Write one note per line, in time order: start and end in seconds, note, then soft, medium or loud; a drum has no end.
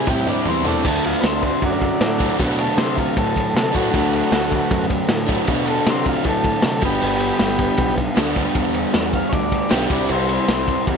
0.07 0.34 A2 medium
0.07 0.26 C3 loud
0.07 0.27 G3 loud
0.07 0.28 C4 medium
0.07 0.28 E4 loud
0.07 0.28 G4 medium
0.07 kick loud
0.07 mid tom medium
0.27 0.44 C3 medium
0.27 0.45 G3 loud
0.27 0.46 C4 loud
0.27 0.47 D4 medium
0.27 0.47 E4 medium
0.27 mid tom medium
0.45 0.73 E2 medium
0.45 0.63 C3 loud
0.45 0.64 G3 loud
0.45 0.65 C4 loud
0.45 0.66 C4 loud
0.45 0.65 E4 loud
0.45 floor tom loud
0.64 0.82 C3 medium
0.64 0.84 G3 medium
0.64 0.84 A3 medium
0.64 0.84 C4 medium
0.64 0.86 D4 loud
0.64 0.84 E4 loud
0.64 floor tom loud
0.82 1.13 D2 loud
0.82 2.23 D3 medium
0.82 2.21 F#3 medium
0.82 2.20 A3 medium
0.82 1.04 A4 medium
0.82 kick loud
0.82 crash loud
0.87 2.18 D4 loud
1.04 1.24 F4 medium
1.04 ride medium
1.21 1.52 D2 loud
1.21 1.23 B3 medium
1.21 snare loud
1.21 ride loud
1.25 1.43 C4 loud
1.42 1.44 B3 medium
1.42 kick medium
1.42 ride medium
1.46 1.63 C4 loud
1.62 1.90 F#2 loud
1.62 2.37 F#3 medium
1.62 2.39 D4 medium
1.62 kick loud
1.62 ride loud
1.81 kick medium
1.81 ride medium
2.00 2.28 A2 medium
2.00 snare loud
2.00 ride loud
2.18 2.39 F#3 medium
2.18 2.41 A3 medium
2.18 2.43 D4 medium
2.18 kick loud
2.18 ride medium
2.23 2.38 D3 medium
2.38 2.67 B2 loud
2.38 3.77 D3 medium
2.38 3.75 F#3 medium
2.38 3.73 A3 medium
2.38 kick loud
2.38 ride loud
2.43 3.72 D4 loud
2.58 2.78 A4 loud
2.58 ride medium
2.77 3.05 C3 loud
2.77 2.97 C5 medium
2.77 snare loud
2.77 ride loud
2.95 2.97 E4 medium
2.95 kick medium
2.95 ride medium
3.00 3.17 F4 medium
3.17 3.45 A2 loud
3.17 3.55 A4 medium
3.17 kick loud
3.17 ride loud
3.36 kick medium
3.36 ride medium
3.54 3.68 C3 medium
3.54 3.75 A4 loud
3.54 snare loud
3.54 ride loud
3.72 3.88 A2 loud
3.72 3.93 F#3 medium
3.72 3.95 A3 medium
3.72 4.86 A3 medium
3.72 3.97 D4 loud
3.72 4.87 F#4 medium
3.72 kick medium
3.72 ride medium
3.77 3.91 D3 medium
3.92 4.22 D2 loud
3.92 5.26 D3 medium
3.92 5.27 F#3 loud
3.92 5.28 A3 loud
3.92 kick loud
3.92 ride loud
3.97 5.26 D4 medium
4.13 ride medium
4.31 4.59 D2 loud
4.31 snare loud
4.31 ride loud
4.52 kick medium
4.52 ride medium
4.71 4.99 F#2 loud
4.71 kick loud
4.71 ride loud
4.90 kick medium
4.90 ride medium
5.09 5.37 A2 medium
5.09 snare loud
5.09 ride loud
5.26 5.46 F#3 medium
5.26 5.46 A3 medium
5.26 5.50 D4 medium
5.26 kick medium
5.26 ride medium
5.32 5.44 D3 medium
5.45 5.76 B2 loud
5.45 6.80 D3 loud
5.45 6.81 F#3 medium
5.45 6.82 A3 loud
5.45 kick loud
5.45 ride loud
5.51 6.86 D4 medium
5.67 5.87 A4 medium
5.67 ride medium
5.86 6.14 C3 loud
5.86 6.06 C5 medium
5.86 snare loud
5.86 ride loud
6.04 6.06 E4 medium
6.04 kick medium
6.04 ride medium
6.09 6.26 F4 medium
6.24 6.53 A2 loud
6.24 kick loud
6.24 ride loud
6.29 6.64 A4 loud
6.44 kick medium
6.44 ride medium
6.62 6.77 C3 medium
6.62 snare loud
6.62 ride loud
6.67 6.83 A4 medium
6.81 6.96 G1 medium
6.81 8.14 G2 loud
6.81 8.15 D3 loud
6.81 8.18 G3 loud
6.81 7.95 B3 medium
6.81 kick loud
6.81 ride medium
6.85 8.17 B3 loud
6.85 8.18 D4 loud
6.85 7.96 G4 loud
7.01 7.30 G1 loud
7.01 crash loud
7.20 ride medium
7.39 7.68 G1 loud
7.39 snare loud
7.39 ride loud
7.59 kick medium
7.59 ride medium
7.77 8.06 B1 loud
7.77 kick loud
7.77 ride loud
7.97 kick medium
7.97 ride medium
8.15 8.45 D2 medium
8.15 8.33 G2 medium
8.15 8.35 D3 medium
8.15 8.37 G3 medium
8.15 8.36 B3 medium
8.15 snare loud
8.15 ride loud
8.20 8.36 D4 medium
8.35 9.67 G2 medium
8.35 9.68 D3 loud
8.35 9.69 G3 loud
8.35 9.71 B3 loud
8.35 kick loud
8.35 ride medium
8.40 9.72 D4 loud
8.55 8.83 E2 loud
8.55 kick loud
8.55 ride loud
8.74 ride medium
8.94 9.22 E2 loud
8.94 snare loud
8.94 ride loud
9.13 9.33 F5 loud
9.13 kick medium
9.13 ride medium
9.29 9.61 D2 loud
9.29 9.32 C#5 medium
9.29 kick loud
9.29 ride loud
9.34 9.71 D5 loud
9.52 kick medium
9.52 ride medium
9.68 9.85 B1 loud
9.68 9.88 G2 medium
9.68 9.88 D3 medium
9.68 9.89 G3 medium
9.68 9.89 B3 medium
9.68 9.90 G4 loud
9.68 snare loud
9.68 ride loud
9.74 9.90 D4 loud
9.88 10.04 C2 medium
9.88 10.97 C3 loud
9.88 10.97 G3 loud
9.88 10.97 C4 medium
9.88 kick loud
9.88 ride medium
9.92 10.10 D4 medium
9.92 10.97 E4 loud
10.09 10.37 C2 loud
10.09 10.85 C4 medium
10.09 ride loud
10.29 ride medium
10.48 10.76 C2 medium
10.48 snare loud
10.48 ride loud
10.68 kick medium
10.68 ride medium
10.87 10.97 E2 loud
10.87 kick loud
10.87 ride loud